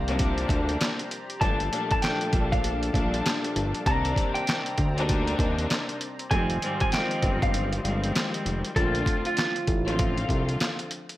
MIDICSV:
0, 0, Header, 1, 6, 480
1, 0, Start_track
1, 0, Tempo, 612245
1, 1109, Time_signature, 4, 2, 24, 8
1, 8759, End_track
2, 0, Start_track
2, 0, Title_t, "Clean electric guitar"
2, 0, Program_c, 0, 27
2, 0, Note_on_c, 0, 77, 82
2, 268, Note_off_c, 0, 77, 0
2, 1104, Note_on_c, 0, 81, 106
2, 1473, Note_off_c, 0, 81, 0
2, 1504, Note_on_c, 0, 81, 82
2, 1582, Note_off_c, 0, 81, 0
2, 1585, Note_on_c, 0, 79, 81
2, 1954, Note_off_c, 0, 79, 0
2, 1976, Note_on_c, 0, 77, 81
2, 2194, Note_off_c, 0, 77, 0
2, 3036, Note_on_c, 0, 82, 96
2, 3400, Note_off_c, 0, 82, 0
2, 3406, Note_on_c, 0, 79, 83
2, 4101, Note_off_c, 0, 79, 0
2, 4944, Note_on_c, 0, 80, 102
2, 5313, Note_off_c, 0, 80, 0
2, 5340, Note_on_c, 0, 80, 84
2, 5421, Note_off_c, 0, 80, 0
2, 5431, Note_on_c, 0, 79, 83
2, 5797, Note_off_c, 0, 79, 0
2, 5823, Note_on_c, 0, 77, 74
2, 6037, Note_off_c, 0, 77, 0
2, 6867, Note_on_c, 0, 69, 96
2, 7235, Note_off_c, 0, 69, 0
2, 7264, Note_on_c, 0, 65, 76
2, 7951, Note_off_c, 0, 65, 0
2, 8759, End_track
3, 0, Start_track
3, 0, Title_t, "Analog synth pad"
3, 0, Program_c, 1, 89
3, 0, Note_on_c, 1, 67, 79
3, 0, Note_on_c, 1, 72, 82
3, 0, Note_on_c, 1, 74, 75
3, 0, Note_on_c, 1, 82, 86
3, 1091, Note_off_c, 1, 72, 0
3, 1091, Note_off_c, 1, 82, 0
3, 1092, Note_off_c, 1, 74, 0
3, 1113, Note_on_c, 1, 69, 70
3, 1113, Note_on_c, 1, 81, 94
3, 1114, Note_on_c, 1, 77, 75
3, 2999, Note_off_c, 1, 67, 0
3, 3012, Note_off_c, 1, 69, 0
3, 3012, Note_off_c, 1, 81, 0
3, 3013, Note_off_c, 1, 77, 0
3, 3037, Note_on_c, 1, 60, 88
3, 3037, Note_on_c, 1, 74, 78
3, 3038, Note_on_c, 1, 72, 73
3, 3038, Note_on_c, 1, 82, 88
3, 4934, Note_off_c, 1, 60, 0
3, 4934, Note_off_c, 1, 72, 0
3, 4934, Note_off_c, 1, 74, 0
3, 4935, Note_off_c, 1, 82, 0
3, 4956, Note_on_c, 1, 75, 77
3, 4957, Note_on_c, 1, 65, 86
3, 4957, Note_on_c, 1, 72, 74
3, 4957, Note_on_c, 1, 77, 84
3, 6854, Note_off_c, 1, 65, 0
3, 6854, Note_off_c, 1, 72, 0
3, 6854, Note_off_c, 1, 75, 0
3, 6854, Note_off_c, 1, 77, 0
3, 8759, End_track
4, 0, Start_track
4, 0, Title_t, "String section"
4, 0, Program_c, 2, 48
4, 59, Note_on_c, 2, 48, 108
4, 61, Note_on_c, 2, 53, 99
4, 63, Note_on_c, 2, 55, 92
4, 66, Note_on_c, 2, 58, 97
4, 68, Note_on_c, 2, 62, 110
4, 819, Note_off_c, 2, 48, 0
4, 820, Note_off_c, 2, 53, 0
4, 821, Note_off_c, 2, 55, 0
4, 822, Note_off_c, 2, 58, 0
4, 823, Note_off_c, 2, 62, 0
4, 1103, Note_on_c, 2, 46, 97
4, 1106, Note_on_c, 2, 53, 93
4, 1108, Note_on_c, 2, 55, 93
4, 1110, Note_on_c, 2, 57, 92
4, 1112, Note_on_c, 2, 62, 105
4, 1332, Note_off_c, 2, 46, 0
4, 1334, Note_off_c, 2, 53, 0
4, 1334, Note_off_c, 2, 55, 0
4, 1335, Note_off_c, 2, 57, 0
4, 1337, Note_off_c, 2, 62, 0
4, 1344, Note_on_c, 2, 46, 98
4, 1346, Note_on_c, 2, 53, 86
4, 1348, Note_on_c, 2, 55, 87
4, 1350, Note_on_c, 2, 57, 96
4, 1353, Note_on_c, 2, 62, 105
4, 1572, Note_off_c, 2, 46, 0
4, 1573, Note_off_c, 2, 53, 0
4, 1574, Note_off_c, 2, 55, 0
4, 1575, Note_off_c, 2, 57, 0
4, 1577, Note_off_c, 2, 62, 0
4, 1587, Note_on_c, 2, 46, 99
4, 1589, Note_on_c, 2, 53, 97
4, 1591, Note_on_c, 2, 55, 93
4, 1593, Note_on_c, 2, 57, 97
4, 1595, Note_on_c, 2, 62, 110
4, 2265, Note_off_c, 2, 46, 0
4, 2266, Note_off_c, 2, 53, 0
4, 2267, Note_off_c, 2, 55, 0
4, 2268, Note_off_c, 2, 57, 0
4, 2269, Note_off_c, 2, 62, 0
4, 2299, Note_on_c, 2, 46, 95
4, 2300, Note_on_c, 2, 53, 95
4, 2303, Note_on_c, 2, 55, 93
4, 2305, Note_on_c, 2, 57, 87
4, 2307, Note_on_c, 2, 62, 113
4, 2981, Note_off_c, 2, 46, 0
4, 2982, Note_off_c, 2, 53, 0
4, 2983, Note_off_c, 2, 55, 0
4, 2984, Note_off_c, 2, 57, 0
4, 2985, Note_off_c, 2, 62, 0
4, 3028, Note_on_c, 2, 48, 103
4, 3030, Note_on_c, 2, 51, 87
4, 3032, Note_on_c, 2, 55, 92
4, 3034, Note_on_c, 2, 58, 90
4, 3037, Note_on_c, 2, 62, 109
4, 3706, Note_off_c, 2, 48, 0
4, 3707, Note_off_c, 2, 51, 0
4, 3708, Note_off_c, 2, 55, 0
4, 3709, Note_off_c, 2, 58, 0
4, 3710, Note_off_c, 2, 62, 0
4, 3901, Note_on_c, 2, 48, 95
4, 3903, Note_on_c, 2, 63, 100
4, 3905, Note_on_c, 2, 55, 94
4, 3908, Note_on_c, 2, 58, 95
4, 3909, Note_on_c, 2, 62, 121
4, 4660, Note_off_c, 2, 48, 0
4, 4661, Note_off_c, 2, 63, 0
4, 4662, Note_off_c, 2, 55, 0
4, 4663, Note_off_c, 2, 58, 0
4, 4664, Note_off_c, 2, 62, 0
4, 4941, Note_on_c, 2, 44, 95
4, 4943, Note_on_c, 2, 51, 88
4, 4945, Note_on_c, 2, 53, 85
4, 4947, Note_on_c, 2, 55, 95
4, 4949, Note_on_c, 2, 60, 107
4, 5171, Note_off_c, 2, 44, 0
4, 5172, Note_off_c, 2, 51, 0
4, 5173, Note_off_c, 2, 53, 0
4, 5174, Note_off_c, 2, 55, 0
4, 5175, Note_off_c, 2, 60, 0
4, 5179, Note_on_c, 2, 44, 95
4, 5181, Note_on_c, 2, 51, 91
4, 5183, Note_on_c, 2, 53, 92
4, 5186, Note_on_c, 2, 55, 95
4, 5187, Note_on_c, 2, 60, 107
4, 5410, Note_off_c, 2, 44, 0
4, 5411, Note_off_c, 2, 51, 0
4, 5412, Note_off_c, 2, 53, 0
4, 5413, Note_off_c, 2, 55, 0
4, 5414, Note_off_c, 2, 60, 0
4, 5439, Note_on_c, 2, 56, 109
4, 5441, Note_on_c, 2, 51, 100
4, 5443, Note_on_c, 2, 53, 94
4, 5445, Note_on_c, 2, 55, 95
4, 5447, Note_on_c, 2, 60, 112
4, 6111, Note_off_c, 2, 56, 0
4, 6112, Note_off_c, 2, 51, 0
4, 6113, Note_off_c, 2, 53, 0
4, 6114, Note_off_c, 2, 55, 0
4, 6115, Note_off_c, 2, 60, 0
4, 6151, Note_on_c, 2, 56, 94
4, 6153, Note_on_c, 2, 51, 84
4, 6155, Note_on_c, 2, 53, 85
4, 6157, Note_on_c, 2, 55, 87
4, 6160, Note_on_c, 2, 60, 101
4, 6827, Note_off_c, 2, 56, 0
4, 6828, Note_off_c, 2, 51, 0
4, 6829, Note_off_c, 2, 53, 0
4, 6830, Note_off_c, 2, 55, 0
4, 6831, Note_off_c, 2, 60, 0
4, 6861, Note_on_c, 2, 50, 97
4, 6863, Note_on_c, 2, 53, 88
4, 6865, Note_on_c, 2, 57, 87
4, 6867, Note_on_c, 2, 60, 89
4, 6870, Note_on_c, 2, 65, 108
4, 7542, Note_off_c, 2, 50, 0
4, 7543, Note_off_c, 2, 53, 0
4, 7544, Note_off_c, 2, 57, 0
4, 7545, Note_off_c, 2, 60, 0
4, 7547, Note_off_c, 2, 65, 0
4, 7730, Note_on_c, 2, 50, 94
4, 7732, Note_on_c, 2, 53, 101
4, 7734, Note_on_c, 2, 57, 95
4, 7737, Note_on_c, 2, 60, 90
4, 7738, Note_on_c, 2, 65, 105
4, 8495, Note_off_c, 2, 50, 0
4, 8496, Note_off_c, 2, 53, 0
4, 8496, Note_off_c, 2, 57, 0
4, 8498, Note_off_c, 2, 60, 0
4, 8499, Note_off_c, 2, 65, 0
4, 8759, End_track
5, 0, Start_track
5, 0, Title_t, "Analog synth bass"
5, 0, Program_c, 3, 38
5, 0, Note_on_c, 3, 36, 106
5, 357, Note_off_c, 3, 36, 0
5, 386, Note_on_c, 3, 38, 101
5, 605, Note_off_c, 3, 38, 0
5, 1110, Note_on_c, 3, 31, 108
5, 1327, Note_off_c, 3, 31, 0
5, 1829, Note_on_c, 3, 34, 93
5, 2278, Note_off_c, 3, 34, 0
5, 2306, Note_on_c, 3, 34, 95
5, 2525, Note_off_c, 3, 34, 0
5, 2791, Note_on_c, 3, 31, 100
5, 2926, Note_off_c, 3, 31, 0
5, 3029, Note_on_c, 3, 36, 119
5, 3247, Note_off_c, 3, 36, 0
5, 3748, Note_on_c, 3, 38, 102
5, 4197, Note_off_c, 3, 38, 0
5, 4226, Note_on_c, 3, 39, 94
5, 4445, Note_off_c, 3, 39, 0
5, 4948, Note_on_c, 3, 29, 106
5, 5167, Note_off_c, 3, 29, 0
5, 5668, Note_on_c, 3, 31, 99
5, 6117, Note_off_c, 3, 31, 0
5, 6150, Note_on_c, 3, 31, 93
5, 6368, Note_off_c, 3, 31, 0
5, 6630, Note_on_c, 3, 29, 93
5, 6766, Note_off_c, 3, 29, 0
5, 6870, Note_on_c, 3, 34, 112
5, 7087, Note_off_c, 3, 34, 0
5, 7588, Note_on_c, 3, 33, 92
5, 8038, Note_off_c, 3, 33, 0
5, 8067, Note_on_c, 3, 36, 94
5, 8286, Note_off_c, 3, 36, 0
5, 8759, End_track
6, 0, Start_track
6, 0, Title_t, "Drums"
6, 62, Note_on_c, 9, 42, 56
6, 140, Note_off_c, 9, 42, 0
6, 150, Note_on_c, 9, 42, 102
6, 155, Note_on_c, 9, 36, 99
6, 228, Note_off_c, 9, 42, 0
6, 233, Note_off_c, 9, 36, 0
6, 296, Note_on_c, 9, 42, 55
6, 374, Note_off_c, 9, 42, 0
6, 385, Note_on_c, 9, 36, 94
6, 393, Note_on_c, 9, 42, 76
6, 463, Note_off_c, 9, 36, 0
6, 471, Note_off_c, 9, 42, 0
6, 540, Note_on_c, 9, 42, 53
6, 618, Note_off_c, 9, 42, 0
6, 633, Note_on_c, 9, 42, 100
6, 637, Note_on_c, 9, 38, 122
6, 644, Note_on_c, 9, 39, 94
6, 711, Note_off_c, 9, 42, 0
6, 715, Note_off_c, 9, 38, 0
6, 723, Note_off_c, 9, 39, 0
6, 779, Note_on_c, 9, 42, 56
6, 857, Note_off_c, 9, 42, 0
6, 872, Note_on_c, 9, 42, 77
6, 951, Note_off_c, 9, 42, 0
6, 1017, Note_on_c, 9, 42, 53
6, 1095, Note_off_c, 9, 42, 0
6, 1108, Note_on_c, 9, 36, 123
6, 1109, Note_on_c, 9, 42, 92
6, 1187, Note_off_c, 9, 36, 0
6, 1188, Note_off_c, 9, 42, 0
6, 1255, Note_on_c, 9, 42, 59
6, 1333, Note_off_c, 9, 42, 0
6, 1354, Note_on_c, 9, 42, 85
6, 1432, Note_off_c, 9, 42, 0
6, 1495, Note_on_c, 9, 42, 54
6, 1500, Note_on_c, 9, 36, 89
6, 1573, Note_off_c, 9, 42, 0
6, 1578, Note_off_c, 9, 36, 0
6, 1586, Note_on_c, 9, 42, 87
6, 1598, Note_on_c, 9, 38, 122
6, 1605, Note_on_c, 9, 39, 99
6, 1665, Note_off_c, 9, 42, 0
6, 1677, Note_off_c, 9, 38, 0
6, 1684, Note_off_c, 9, 39, 0
6, 1733, Note_on_c, 9, 42, 54
6, 1812, Note_off_c, 9, 42, 0
6, 1825, Note_on_c, 9, 42, 81
6, 1828, Note_on_c, 9, 36, 100
6, 1903, Note_off_c, 9, 42, 0
6, 1906, Note_off_c, 9, 36, 0
6, 1980, Note_on_c, 9, 36, 96
6, 1983, Note_on_c, 9, 42, 58
6, 2058, Note_off_c, 9, 36, 0
6, 2061, Note_off_c, 9, 42, 0
6, 2071, Note_on_c, 9, 42, 104
6, 2149, Note_off_c, 9, 42, 0
6, 2216, Note_on_c, 9, 42, 55
6, 2295, Note_off_c, 9, 42, 0
6, 2305, Note_on_c, 9, 36, 98
6, 2314, Note_on_c, 9, 42, 79
6, 2384, Note_off_c, 9, 36, 0
6, 2392, Note_off_c, 9, 42, 0
6, 2461, Note_on_c, 9, 42, 54
6, 2539, Note_off_c, 9, 42, 0
6, 2553, Note_on_c, 9, 42, 97
6, 2558, Note_on_c, 9, 38, 116
6, 2565, Note_on_c, 9, 39, 94
6, 2632, Note_off_c, 9, 42, 0
6, 2636, Note_off_c, 9, 38, 0
6, 2643, Note_off_c, 9, 39, 0
6, 2700, Note_on_c, 9, 42, 58
6, 2778, Note_off_c, 9, 42, 0
6, 2792, Note_on_c, 9, 42, 74
6, 2870, Note_off_c, 9, 42, 0
6, 2936, Note_on_c, 9, 42, 52
6, 3015, Note_off_c, 9, 42, 0
6, 3028, Note_on_c, 9, 36, 119
6, 3030, Note_on_c, 9, 42, 93
6, 3106, Note_off_c, 9, 36, 0
6, 3108, Note_off_c, 9, 42, 0
6, 3175, Note_on_c, 9, 42, 60
6, 3253, Note_off_c, 9, 42, 0
6, 3264, Note_on_c, 9, 36, 94
6, 3274, Note_on_c, 9, 42, 85
6, 3342, Note_off_c, 9, 36, 0
6, 3352, Note_off_c, 9, 42, 0
6, 3414, Note_on_c, 9, 42, 56
6, 3492, Note_off_c, 9, 42, 0
6, 3507, Note_on_c, 9, 42, 85
6, 3519, Note_on_c, 9, 38, 125
6, 3526, Note_on_c, 9, 39, 99
6, 3585, Note_off_c, 9, 42, 0
6, 3597, Note_off_c, 9, 38, 0
6, 3604, Note_off_c, 9, 39, 0
6, 3654, Note_on_c, 9, 42, 53
6, 3732, Note_off_c, 9, 42, 0
6, 3744, Note_on_c, 9, 42, 81
6, 3747, Note_on_c, 9, 36, 97
6, 3822, Note_off_c, 9, 42, 0
6, 3826, Note_off_c, 9, 36, 0
6, 3902, Note_on_c, 9, 42, 58
6, 3981, Note_off_c, 9, 42, 0
6, 3990, Note_on_c, 9, 42, 102
6, 3995, Note_on_c, 9, 36, 99
6, 4069, Note_off_c, 9, 42, 0
6, 4073, Note_off_c, 9, 36, 0
6, 4135, Note_on_c, 9, 42, 55
6, 4214, Note_off_c, 9, 42, 0
6, 4225, Note_on_c, 9, 36, 95
6, 4232, Note_on_c, 9, 42, 75
6, 4303, Note_off_c, 9, 36, 0
6, 4310, Note_off_c, 9, 42, 0
6, 4379, Note_on_c, 9, 42, 54
6, 4457, Note_off_c, 9, 42, 0
6, 4471, Note_on_c, 9, 42, 96
6, 4476, Note_on_c, 9, 38, 120
6, 4483, Note_on_c, 9, 39, 94
6, 4550, Note_off_c, 9, 42, 0
6, 4554, Note_off_c, 9, 38, 0
6, 4561, Note_off_c, 9, 39, 0
6, 4618, Note_on_c, 9, 42, 56
6, 4697, Note_off_c, 9, 42, 0
6, 4711, Note_on_c, 9, 42, 77
6, 4789, Note_off_c, 9, 42, 0
6, 4856, Note_on_c, 9, 42, 53
6, 4934, Note_off_c, 9, 42, 0
6, 4948, Note_on_c, 9, 36, 122
6, 4949, Note_on_c, 9, 42, 93
6, 5026, Note_off_c, 9, 36, 0
6, 5027, Note_off_c, 9, 42, 0
6, 5094, Note_on_c, 9, 42, 58
6, 5172, Note_off_c, 9, 42, 0
6, 5193, Note_on_c, 9, 42, 86
6, 5271, Note_off_c, 9, 42, 0
6, 5333, Note_on_c, 9, 42, 56
6, 5339, Note_on_c, 9, 36, 95
6, 5412, Note_off_c, 9, 42, 0
6, 5418, Note_off_c, 9, 36, 0
6, 5426, Note_on_c, 9, 42, 88
6, 5438, Note_on_c, 9, 38, 122
6, 5445, Note_on_c, 9, 39, 99
6, 5504, Note_off_c, 9, 42, 0
6, 5516, Note_off_c, 9, 38, 0
6, 5523, Note_off_c, 9, 39, 0
6, 5574, Note_on_c, 9, 42, 53
6, 5652, Note_off_c, 9, 42, 0
6, 5664, Note_on_c, 9, 42, 80
6, 5667, Note_on_c, 9, 36, 102
6, 5743, Note_off_c, 9, 42, 0
6, 5746, Note_off_c, 9, 36, 0
6, 5820, Note_on_c, 9, 36, 101
6, 5823, Note_on_c, 9, 42, 56
6, 5898, Note_off_c, 9, 36, 0
6, 5901, Note_off_c, 9, 42, 0
6, 5911, Note_on_c, 9, 42, 100
6, 5990, Note_off_c, 9, 42, 0
6, 6057, Note_on_c, 9, 42, 55
6, 6136, Note_off_c, 9, 42, 0
6, 6154, Note_on_c, 9, 42, 77
6, 6233, Note_off_c, 9, 42, 0
6, 6300, Note_on_c, 9, 42, 52
6, 6378, Note_off_c, 9, 42, 0
6, 6393, Note_on_c, 9, 42, 97
6, 6398, Note_on_c, 9, 38, 117
6, 6405, Note_on_c, 9, 39, 94
6, 6472, Note_off_c, 9, 42, 0
6, 6476, Note_off_c, 9, 38, 0
6, 6483, Note_off_c, 9, 39, 0
6, 6540, Note_on_c, 9, 42, 55
6, 6618, Note_off_c, 9, 42, 0
6, 6633, Note_on_c, 9, 42, 73
6, 6711, Note_off_c, 9, 42, 0
6, 6778, Note_on_c, 9, 42, 53
6, 6856, Note_off_c, 9, 42, 0
6, 6868, Note_on_c, 9, 36, 114
6, 6871, Note_on_c, 9, 42, 87
6, 6947, Note_off_c, 9, 36, 0
6, 6949, Note_off_c, 9, 42, 0
6, 7015, Note_on_c, 9, 42, 57
6, 7093, Note_off_c, 9, 42, 0
6, 7104, Note_on_c, 9, 36, 91
6, 7114, Note_on_c, 9, 42, 85
6, 7183, Note_off_c, 9, 36, 0
6, 7192, Note_off_c, 9, 42, 0
6, 7254, Note_on_c, 9, 42, 54
6, 7332, Note_off_c, 9, 42, 0
6, 7345, Note_on_c, 9, 42, 83
6, 7357, Note_on_c, 9, 38, 120
6, 7365, Note_on_c, 9, 39, 95
6, 7424, Note_off_c, 9, 42, 0
6, 7436, Note_off_c, 9, 38, 0
6, 7443, Note_off_c, 9, 39, 0
6, 7494, Note_on_c, 9, 42, 52
6, 7572, Note_off_c, 9, 42, 0
6, 7585, Note_on_c, 9, 42, 75
6, 7588, Note_on_c, 9, 36, 98
6, 7663, Note_off_c, 9, 42, 0
6, 7666, Note_off_c, 9, 36, 0
6, 7743, Note_on_c, 9, 42, 54
6, 7822, Note_off_c, 9, 42, 0
6, 7831, Note_on_c, 9, 42, 99
6, 7836, Note_on_c, 9, 36, 99
6, 7910, Note_off_c, 9, 42, 0
6, 7914, Note_off_c, 9, 36, 0
6, 7977, Note_on_c, 9, 42, 52
6, 8055, Note_off_c, 9, 42, 0
6, 8066, Note_on_c, 9, 36, 94
6, 8074, Note_on_c, 9, 42, 71
6, 8144, Note_off_c, 9, 36, 0
6, 8153, Note_off_c, 9, 42, 0
6, 8221, Note_on_c, 9, 42, 50
6, 8300, Note_off_c, 9, 42, 0
6, 8313, Note_on_c, 9, 42, 95
6, 8318, Note_on_c, 9, 38, 113
6, 8325, Note_on_c, 9, 39, 95
6, 8392, Note_off_c, 9, 42, 0
6, 8396, Note_off_c, 9, 38, 0
6, 8403, Note_off_c, 9, 39, 0
6, 8460, Note_on_c, 9, 42, 54
6, 8538, Note_off_c, 9, 42, 0
6, 8552, Note_on_c, 9, 42, 75
6, 8630, Note_off_c, 9, 42, 0
6, 8697, Note_on_c, 9, 42, 50
6, 8759, Note_off_c, 9, 42, 0
6, 8759, End_track
0, 0, End_of_file